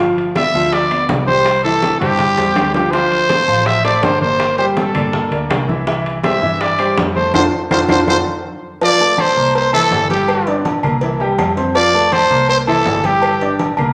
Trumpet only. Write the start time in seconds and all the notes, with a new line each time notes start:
0.37 E5
0.74 D5
1.27 C5
1.64 A4
2.01 G4
2.74 G4
2.92 C5
3.67 E5
3.85 D5
4.04 C5
4.22 C5
4.58 C5
4.78 A4
6.24 E5
6.61 D5
7.16 C5
7.35 C5
7.72 C5
7.91 C5
8.09 C5
8.84 D5
9.21 C5
9.56 C5
9.74 A4
10.11 G4
11.76 D5
12.13 C5
12.49 C5
12.68 A4
13.06 G4